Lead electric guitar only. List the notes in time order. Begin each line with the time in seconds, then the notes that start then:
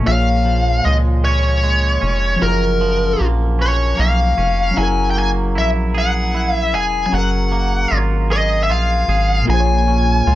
0.07 F5
0.85 D#5
1.25 C#5
2.42 A#4
3.62 C#5
4.00 F5
4.78 G#5
5.10 G5
5.19 G#5
5.58 E5
5.98 F#5
6.56 E5
6.75 G#5
7.06 G#5
7.15 F#5
8.32 D#5
8.63 E5
8.72 F5
9.50 G#5